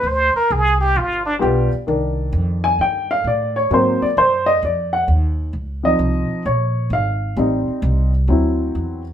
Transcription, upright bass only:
X:1
M:4/4
L:1/8
Q:"Swing" 1/4=131
K:Cm
V:1 name="Upright bass" clef=bass
D,, z C,,2 G,,,2 =B,,, z | C,,2 F,,2 G,,2 =A,,2 | A,, z _G,,2 F,,2 E,,2 | _D,,2 C,, z B,,,2 A,,,2 |
=A,,, z C,,2 D,,2 =E,,2 |]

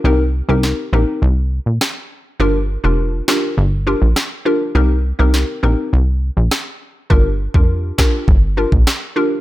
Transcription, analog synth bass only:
X:1
M:4/4
L:1/16
Q:1/4=102
K:Gm
V:1 name="Analog synth bass" clef=bass
C,,3 C,,2 z B,,, z C,,3 B,,, z4 | G,,,3 F,,,3 z2 G,,,3 B,,, z4 | C,,3 C,,2 z B,,, z C,,3 B,,, z4 | G,,,3 F,,,3 z2 G,,,3 B,,, z4 |]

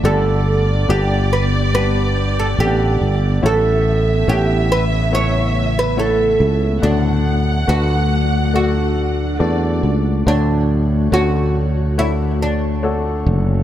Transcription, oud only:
X:1
M:4/4
L:1/16
Q:1/4=70
K:D
V:1 name="Oud"
A4 G2 B2 B3 A G3 z | A4 G2 B2 c3 B A3 z | D4 F4 F4 z4 | D4 F4 E2 D4 z2 |]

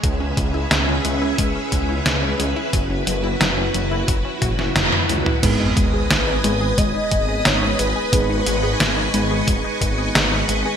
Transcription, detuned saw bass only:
X:1
M:4/4
L:1/8
Q:1/4=89
K:G#m
V:1 name="Detuned saw bass" clef=bass
C,, C,, C,, C,, C,, C,, C,, C,, | F,,, F,,, F,,, F,,, F,,, F,,, F,,, C,, | G,,, G,,, G,,, G,,, G,,, G,,, G,,, G,,, | G,,, G,,, G,,, G,,, G,,, G,,, G,,, G,,, |]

